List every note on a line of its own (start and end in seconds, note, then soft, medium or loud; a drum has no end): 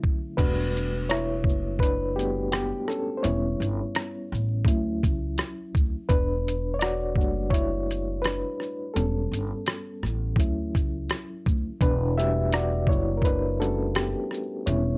0.00 0.33 D3 medium
0.00 0.35 F#3 medium
0.00 0.36 A3 medium
0.00 0.37 C#4 medium
0.00 0.39 E4 medium
0.00 kick medium
0.37 1.45 E1 loud
0.37 0.88 G3 medium
0.37 0.88 A3 soft
0.37 1.06 D4 medium
0.37 0.89 F#4 medium
0.37 1.05 B4 medium
0.37 kick loud
0.37 closed hi-hat medium
0.37 crash medium
0.77 closed hi-hat soft
0.77 shaker soft
1.09 1.78 E4 medium
1.09 1.77 C#5 medium
1.09 cross-stick loud
1.09 closed hi-hat medium
1.44 2.69 F#1 medium
1.44 kick medium
1.49 shaker soft
1.79 2.15 D4 medium
1.79 2.17 B4 medium
1.79 kick medium
1.79 closed hi-hat medium
2.16 2.49 G3 soft
2.16 2.49 A3 soft
2.16 2.51 B3 medium
2.16 2.49 D4 soft
2.16 2.49 F#4 soft
2.16 2.50 G4 medium
2.16 closed hi-hat soft
2.16 shaker soft
2.52 2.87 B3 medium
2.52 2.89 G4 medium
2.52 cross-stick medium
2.52 closed hi-hat medium
2.88 3.03 C#4 medium
2.88 3.01 A4 medium
2.88 cross-stick soft
2.88 shaker soft
3.17 3.24 C5 medium
3.23 3.57 E1 loud
3.23 3.73 G3 medium
3.23 3.74 B3 medium
3.23 3.74 C#4 medium
3.23 4.63 E4 medium
3.23 4.62 C#5 medium
3.23 closed hi-hat medium
3.60 3.79 G1 medium
3.60 closed hi-hat soft
3.60 shaker soft
3.95 cross-stick loud
3.95 closed hi-hat medium
4.32 4.64 A1 loud
4.32 shaker soft
4.65 4.99 D2 loud
4.65 6.06 F#3 soft
4.65 6.06 C#4 soft
4.65 6.06 E4 medium
4.65 kick medium
4.65 closed hi-hat medium
5.03 5.36 C#2 medium
5.03 kick medium
5.03 closed hi-hat soft
5.03 shaker soft
5.38 cross-stick medium
5.38 closed hi-hat medium
5.75 5.94 D2 medium
5.75 kick medium
5.75 shaker medium
6.09 7.16 E1 loud
6.09 6.72 D4 medium
6.09 6.77 B4 medium
6.09 kick loud
6.09 closed hi-hat medium
6.48 closed hi-hat soft
6.48 shaker soft
6.74 6.80 C#5 medium
6.79 7.16 F#4 medium
6.79 7.48 D5 medium
6.79 cross-stick loud
6.79 closed hi-hat medium
7.15 8.41 F#1 medium
7.15 7.67 G3 medium
7.15 7.67 A3 soft
7.15 7.67 D4 soft
7.15 7.67 F#4 medium
7.15 kick medium
7.21 shaker soft
7.50 8.20 E4 medium
7.50 8.19 C#5 medium
7.50 kick medium
7.54 closed hi-hat medium
7.91 closed hi-hat soft
7.91 shaker soft
8.22 8.92 D4 medium
8.22 8.97 B4 medium
8.22 cross-stick loud
8.22 closed hi-hat medium
8.60 cross-stick soft
8.60 shaker medium
8.94 9.28 E1 loud
8.94 9.98 G3 medium
8.94 9.99 B3 soft
8.94 10.38 C#4 medium
8.94 11.05 A4 medium
8.94 closed hi-hat medium
9.31 9.51 G1 medium
9.31 closed hi-hat soft
9.31 shaker soft
9.66 cross-stick loud
9.66 closed hi-hat medium
10.03 10.35 A1 medium
10.03 cross-stick soft
10.03 shaker soft
10.36 10.70 D2 medium
10.36 10.88 F#3 soft
10.36 10.89 C#4 soft
10.36 10.89 E4 medium
10.36 kick medium
10.36 closed hi-hat medium
10.75 11.08 C#2 medium
10.75 kick medium
10.75 closed hi-hat soft
10.75 shaker soft
11.10 cross-stick loud
11.10 closed hi-hat medium
11.46 11.65 D2 medium
11.46 kick medium
11.46 shaker soft
11.81 12.87 E1 loud
11.81 12.15 D4 medium
11.81 12.15 B4 medium
11.81 kick loud
11.81 closed hi-hat medium
12.17 12.67 G3 medium
12.17 12.67 A3 soft
12.17 12.68 D4 medium
12.17 12.54 F#4 medium
12.17 12.51 G4 medium
12.17 12.54 E5 medium
12.17 closed hi-hat soft
12.17 shaker soft
12.52 12.87 F#4 medium
12.52 12.90 D5 medium
12.52 cross-stick loud
12.52 closed hi-hat medium
12.87 14.12 F#1 medium
12.87 13.17 E4 medium
12.87 13.17 C#5 medium
12.87 kick medium
12.92 shaker soft
13.17 13.24 A#4 medium
13.22 13.41 B4 medium
13.22 kick medium
13.22 closed hi-hat medium
13.26 13.42 D4 medium
13.60 13.92 G3 soft
13.60 13.93 A3 soft
13.60 13.94 C#4 medium
13.60 13.92 D4 soft
13.60 13.93 F#4 medium
13.60 13.93 A4 medium
13.60 closed hi-hat soft
13.60 shaker soft
13.95 14.64 B3 medium
13.95 14.69 G4 medium
13.95 cross-stick loud
13.95 closed hi-hat medium
14.31 cross-stick soft
14.31 shaker soft
14.66 14.98 E1 loud
14.66 14.98 G3 medium
14.66 14.98 B3 soft
14.66 14.98 C#4 medium
14.66 14.98 E4 medium
14.66 14.98 C#5 medium
14.66 closed hi-hat medium